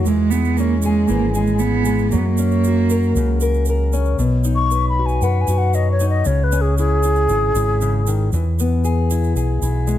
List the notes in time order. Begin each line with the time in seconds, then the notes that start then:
0.04 E2 E3 G#3, shaker
0.30 G#3 B3, shaker
0.45 shaker
0.57 A#3 C#4, shaker
0.82 G#3 G#4, shaker
1.08 G#1 E3 A#3, shaker
1.34 G#3 G#4, shaker
1.47 shaker
1.59 B3 E4, shaker
1.85 G#3, shaker
1.98 shaker
2.11 F#2 F#3 A#3, shaker
2.18 B3
2.25 A#3
2.38 C#4, shaker
2.51 shaker
2.64 F#4, shaker
2.90 A#4, shaker
3.03 shaker
3.15 C#2 C#3, shaker
3.40 A#4, shaker
3.54 shaker
3.65 A#4, shaker
3.93 C#4, shaker
4.05 shaker
4.18 B1 B2, shaker
4.44 D#4, shaker
4.55 C#6
4.71 B4, shaker
4.89 B5
4.99 F#4
5.06 G#5, shaker
5.21 F#2 B4 F#5, shaker
5.41 G#5
5.47 F#2 F#4, shaker
5.58 F#5
5.74 F#3 D#5, shaker
5.91 C#5
6.00 D#4, shaker
6.10 D#5
6.25 C#2 C#3 C#5, shaker
6.44 B4
6.52 C#4, shaker
6.61 G#4
6.78 E4 G#4, shaker
7.03 E4, shaker
7.15 shaker
7.28 G#1 E4, shaker
7.54 G#1 E4, shaker
7.81 C#3, shaker
8.07 D#3, shaker
8.32 E2 E3, shaker
8.59 B3, shaker
8.84 G#4, shaker
9.11 E4, shaker
9.24 shaker
9.35 B1 G#4, shaker
9.61 B1 E4, shaker
9.87 G#3, shaker